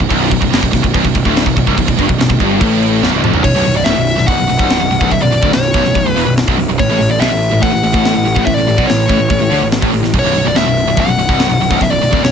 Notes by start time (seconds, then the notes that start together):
0.00 B0 B1, kick
0.10 B0 B1, kick, crash
0.31 B0 B1, kick, crash
0.42 B0 B1, kick
0.52 G1 G2, snare, crash
0.63 B0 B1, kick
0.73 B0 B1, kick, snare, crash
0.84 B0 B1, kick
0.94 B0 B1, kick, crash
1.05 B0 B1, kick
1.15 B0 B1, kick, crash
1.25 D1 D2, kick
1.37 snare, crash
1.46 B0 B1, kick
1.57 B0 B1, kick, crash
1.67 C1 C2, kick
1.78 B0 B1, kick, crash
1.88 B0 B1, kick
1.99 G1 G2, kick, crash
2.09 B0 B1, kick
2.19 B0 B1, snare, crash
2.30 B0 B1, kick
2.40 G1 G2, kick, crash
2.61 A1 A2, kick, crash
2.83 crash
3.03 B0 B1, snare
3.13 C1 C2
3.23 F1 F2, mid tom
3.34 B0 B1, floor tom
3.44 B0 B1 C#5, kick, crash
3.56 B0 B1
3.65 B0 B1, open hi-hat
3.76 B0 B1 D5
3.84 D1 D2 E5, snare, open hi-hat
3.96 B0 B1
4.07 open hi-hat
4.17 B0 B1, snare
4.27 B0 B1 F#5, kick, open hi-hat
4.39 B0 B1
4.49 B0 B1, open hi-hat
4.59 C1 C2, kick
4.70 snare, open hi-hat
4.80 B0 B1
4.90 B0 B1, open hi-hat
5.01 B0 B1, kick
5.11 B0 B1 E5, kick, open hi-hat
5.22 B0 B1 D5
5.32 B0 B1, open hi-hat
5.43 D1 D2, kick
5.53 B0 B1 C#5, snare, open hi-hat
5.74 B0 B1, kick, open hi-hat
5.85 B0 B1, snare
5.95 B0 B1, kick, open hi-hat
6.05 B0 B1
6.12 E2 B4
6.16 E1, open hi-hat
6.25 B0 B1
6.37 snare, open hi-hat
6.48 B0 B1, kick
6.58 B0 B1, open hi-hat
6.68 B0 B1
6.79 A1 A2 C#5, kick, open hi-hat
6.89 A1 A2
7.00 A1 A2, open hi-hat
7.09 A1 A2 D5
7.20 B1 B2 E5, snare, open hi-hat
7.31 A1 A2
7.43 open hi-hat
7.51 A1 A2
7.62 A1 A2 F#5, kick, open hi-hat
7.73 A1 A2
7.83 A1 A2, open hi-hat
7.94 A1 A2, kick
8.05 snare, open hi-hat
8.15 A1 A2
8.26 A1 A2, open hi-hat
8.36 A1 A2, kick
8.45 A1 A2 E5, kick, open hi-hat
8.54 A1 D5
8.58 A2
8.68 A1 A2, open hi-hat
8.78 B1 B2, kick
8.87 A1 A2 C#5, snare, open hi-hat
9.09 A1 A2, kick, open hi-hat
9.19 A1 A2
9.30 A1 A2, kick, open hi-hat
9.40 A1 A2
9.51 D2 D3, open hi-hat
9.61 A1 A2
9.72 snare, open hi-hat
9.82 A1 A2, kick
9.93 A1 A2, open hi-hat
10.02 A1 A2, snare
10.13 B0 B1, kick, crash
10.19 C#5
10.24 B0 B1
10.34 B0 B1, open hi-hat
10.44 B0 B1 D5
10.55 D1 D2 E5, snare, open hi-hat
10.64 B0 B1
10.77 open hi-hat
10.86 B0 B1
10.96 B0 B1 F#5, kick, open hi-hat
11.07 B0 B1
11.17 B0 B1, open hi-hat
11.28 C1 C2, kick
11.39 snare, open hi-hat
11.49 B0 B1
11.59 B0 B1, open hi-hat
11.70 B0 B1, kick, snare
11.80 B0 B1 E5, kick, open hi-hat
11.90 B0 B1 D5
12.01 B0 B1, open hi-hat
12.12 D1 D2, kick
12.23 B0 B1 C#5, snare, open hi-hat